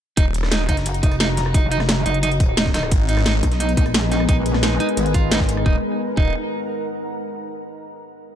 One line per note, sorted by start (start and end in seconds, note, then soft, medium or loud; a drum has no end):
0.17 0.67 D#1 loud
0.17 0.24 D#4 loud
0.17 4.01 F#4 medium
0.17 kick loud
0.17 closed hi-hat loud
0.17 closed hi-hat medium
0.28 3.85 A#5 medium
0.34 closed hi-hat medium
0.43 cross-stick medium
0.43 snare soft
0.52 0.63 D#4 medium
0.52 5.66 D#5 medium
0.52 snare loud
0.52 closed hi-hat loud
0.52 closed hi-hat medium
0.69 1.02 F#1 loud
0.69 0.76 D#4 loud
0.69 kick medium
0.69 closed hi-hat medium
0.77 snare soft
0.77 closed hi-hat soft
0.86 closed hi-hat loud
0.86 closed hi-hat medium
0.94 closed hi-hat soft
1.03 1.53 F1 loud
1.03 1.15 D#4 medium
1.03 kick loud
1.03 closed hi-hat medium
1.12 cross-stick soft
1.12 closed hi-hat soft
1.20 1.27 D#4 loud
1.20 snare loud
1.20 closed hi-hat medium
1.37 snare soft
1.37 closed hi-hat medium
1.46 cross-stick medium
1.54 2.04 F1 medium
1.54 1.66 D#4 medium
1.54 kick loud
1.54 closed hi-hat medium
1.72 1.79 D#4 loud
1.72 closed hi-hat medium
1.80 cross-stick medium
1.80 snare soft
1.89 snare loud
1.89 closed hi-hat medium
2.06 2.39 F#1 loud
2.06 2.18 D#4 medium
2.06 closed hi-hat medium
2.14 closed hi-hat soft
2.23 2.30 D#4 loud
2.23 closed hi-hat medium
2.23 closed hi-hat loud
2.31 closed hi-hat soft
2.40 2.90 D#1 loud
2.40 kick loud
2.40 closed hi-hat medium
2.57 2.69 D#4 medium
2.57 snare loud
2.57 closed hi-hat medium
2.57 closed hi-hat loud
2.66 kick medium
2.66 snare soft
2.74 2.81 D#4 loud
2.74 snare loud
2.74 closed hi-hat medium
2.83 cross-stick medium
2.91 3.42 G#1 loud
2.91 5.63 G#3 medium
2.91 5.66 B3 medium
2.91 5.63 D#4 medium
2.91 5.63 A#4 medium
2.91 5.63 B4 loud
2.91 kick loud
2.91 closed hi-hat medium
2.99 5.66 G#4 medium
3.09 3.20 D#4 medium
3.09 closed hi-hat medium
3.17 cross-stick medium
3.17 snare soft
3.26 3.33 D#4 loud
3.26 snare loud
3.26 closed hi-hat medium
3.43 3.76 B1 loud
3.43 kick medium
3.43 closed hi-hat medium
3.47 5.66 G#5 medium
3.52 snare soft
3.52 closed hi-hat soft
3.60 3.72 D#4 medium
3.60 closed hi-hat medium
3.69 closed hi-hat soft
3.77 4.27 A#1 loud
3.77 3.84 D#4 loud
3.77 kick loud
3.77 closed hi-hat medium
3.86 cross-stick soft
3.86 closed hi-hat soft
3.94 snare loud
3.94 closed hi-hat medium
4.12 4.23 D#4 medium
4.12 snare soft
4.12 closed hi-hat medium
4.20 cross-stick medium
4.29 4.79 A#1 loud
4.29 4.36 D#4 loud
4.29 kick loud
4.29 closed hi-hat medium
4.46 closed hi-hat medium
4.54 cross-stick medium
4.54 snare soft
4.63 4.75 D#4 medium
4.63 snare loud
4.63 closed hi-hat medium
4.80 4.87 D#4 loud
4.80 closed hi-hat medium
4.89 closed hi-hat soft
4.97 5.64 G#1 loud
4.97 closed hi-hat medium
5.06 closed hi-hat soft
5.14 5.31 F4 medium
5.14 kick loud
5.14 closed hi-hat medium
5.31 5.39 D#4 loud
5.31 snare loud
5.31 closed hi-hat medium
5.40 kick medium
5.40 snare medium
5.49 closed hi-hat medium
5.57 cross-stick medium
5.66 5.75 D#1 loud
5.66 5.75 D#4 loud
5.66 6.99 D#4 medium
5.66 kick loud
5.71 6.99 A#4 medium
5.76 6.99 F#5 medium
5.81 6.99 A#5 medium
6.17 6.33 D#1 loud
6.17 6.33 D#4 loud
6.17 kick loud